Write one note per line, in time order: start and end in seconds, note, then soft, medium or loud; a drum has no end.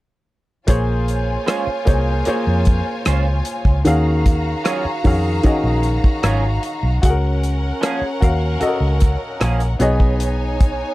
0.67 1.36 A#1 medium
0.67 1.58 A#3 medium
0.67 3.81 F4 medium
0.67 1.58 G#4 medium
0.67 1.58 C5 medium
0.67 3.81 C#5 medium
0.67 1.59 C#5 medium
0.67 3.82 G#5 medium
0.67 kick medium
0.67 closed hi-hat medium
1.08 closed hi-hat medium
1.46 1.66 G#3 medium
1.46 1.67 C#4 medium
1.46 1.67 F4 medium
1.46 1.67 C5 medium
1.46 cross-stick loud
1.46 closed hi-hat medium
1.67 muted fingered electric bass stroke soft
1.85 2.21 C2 medium
1.85 2.16 A#3 medium
1.85 2.17 G#4 medium
1.85 2.17 C5 medium
1.85 2.18 C#5 medium
1.85 kick medium
1.85 closed hi-hat medium
2.25 3.46 A#3 medium
2.25 3.47 G#4 medium
2.25 3.47 C5 medium
2.25 3.48 C#5 medium
2.25 muted fingered electric bass stroke soft
2.25 closed hi-hat medium
2.47 2.81 F2 medium
2.65 kick medium
2.65 closed hi-hat medium
3.05 3.40 C#2 medium
3.05 3.25 G#3 medium
3.05 3.26 C#4 medium
3.05 3.26 F4 medium
3.05 3.26 C5 medium
3.05 cross-stick medium
3.05 closed hi-hat medium
3.45 closed hi-hat medium
3.65 3.82 C#2 medium
3.65 kick medium
3.85 4.54 D#2 medium
3.85 4.75 D#3 medium
3.85 4.75 C#4 medium
3.85 4.76 F#4 medium
3.85 6.99 F#4 medium
3.85 4.76 G#4 medium
3.85 6.99 F5 medium
3.85 4.76 F5 medium
3.85 6.99 A#5 medium
3.85 closed hi-hat medium
4.26 kick medium
4.26 closed hi-hat medium
4.64 4.84 F#3 medium
4.64 4.84 C#4 medium
4.64 4.84 F4 medium
4.64 4.85 G#4 medium
4.64 cross-stick medium
4.64 closed hi-hat medium
4.85 muted fingered electric bass stroke soft
5.04 5.39 F2 medium
5.04 5.34 D#3 medium
5.04 5.35 C#4 medium
5.04 5.35 F#4 medium
5.04 5.35 G#4 medium
5.04 5.36 F5 medium
5.04 kick medium
5.04 open hi-hat soft
5.43 6.64 D#3 medium
5.43 6.64 C#4 medium
5.43 6.65 F#4 medium
5.43 6.65 G#4 medium
5.43 6.65 D#5 medium
5.43 kick medium
5.43 closed hi-hat medium
5.64 5.98 A#1 medium
5.83 closed hi-hat medium
6.04 kick medium
6.23 6.57 G#1 medium
6.23 6.42 F#3 medium
6.23 6.43 C#4 medium
6.23 6.43 F4 medium
6.23 6.43 G#4 medium
6.23 cross-stick medium
6.23 closed hi-hat medium
6.63 closed hi-hat medium
6.83 7.00 B1 medium
7.02 7.71 C#2 medium
7.02 9.77 C#4 medium
7.02 7.92 F#4 medium
7.02 7.09 G#4 medium
7.02 9.77 A#4 medium
7.02 9.77 F#5 medium
7.02 7.94 F#5 medium
7.02 kick medium
7.02 closed hi-hat medium
7.10 7.96 A#4 medium
7.43 closed hi-hat medium
7.81 8.01 F3 medium
7.81 8.01 A#3 medium
7.81 8.02 C#4 medium
7.81 8.02 G#4 medium
7.81 cross-stick medium
7.81 closed hi-hat medium
8.01 muted fingered electric bass stroke soft
8.20 8.56 D#2 medium
8.20 8.51 F#4 medium
8.20 8.52 A#4 medium
8.20 8.53 F5 medium
8.20 kick medium
8.20 closed hi-hat medium
8.60 9.80 F#4 medium
8.60 8.68 A4 medium
8.60 9.81 D#5 medium
8.60 muted fingered electric bass stroke soft
8.60 closed hi-hat medium
8.68 9.84 A#4 medium
8.80 9.15 C#2 medium
9.00 kick medium
9.00 cross-stick soft
9.00 closed hi-hat medium
9.40 9.75 A#1 medium
9.40 9.60 F3 medium
9.40 9.60 A#3 medium
9.40 9.60 C#4 medium
9.40 9.61 G#4 medium
9.40 cross-stick loud
9.40 closed hi-hat medium
9.60 closed hi-hat soft
9.79 10.82 B1 medium
9.79 10.94 B3 medium
9.79 10.94 D#4 medium
9.79 10.94 G#4 medium
9.79 10.94 C#5 medium
9.79 10.94 D#5 medium
9.79 10.94 G#5 medium
9.79 closed hi-hat medium
10.00 kick medium
10.20 closed hi-hat medium
10.60 kick medium
10.60 closed hi-hat medium